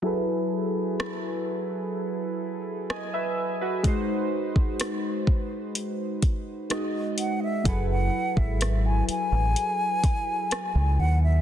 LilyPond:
<<
  \new Staff \with { instrumentName = "Flute" } { \time 4/4 \key fis \dorian \tempo 4 = 63 r1 | r2. r8 fis''16 e''16 | fis''16 fis''8 e''8 gis''16 gis''2 fis''16 e''16 | }
  \new Staff \with { instrumentName = "Synth keys" } { \time 4/4 \key fis \dorian << { r2. <dis'' gis''>16 <b' e''>8 <fis' b'>16~ | <fis' b'>16 r2. r8. | r1 | } \\ { <fis e' gis' a' b'>2. r4 | <gis dis' fis' bis'>2. <gis dis' fis' dis''>4 | <fis e' gis' a' b'>1 | } >> }
  \new Staff \with { instrumentName = "Fingered electric bass" } { \clef bass \time 4/4 \key fis \dorian r1 | r1 | fis,,8 r16 gis,,8. r16 a,,16 r4 r16 cis,16 dis,8 | }
  \new DrumStaff \with { instrumentName = "Drums" } \drummode { \time 4/4 r4 ss4 r4 ss4 | <hh bd>8. bd16 <hh ss>8 bd8 hh8 <hh bd>8 <hh ss>8 hh8 | <hh bd>8. bd16 <hh ss>8 hh8 hh8 <hh bd>8 <hh ss>4 | }
>>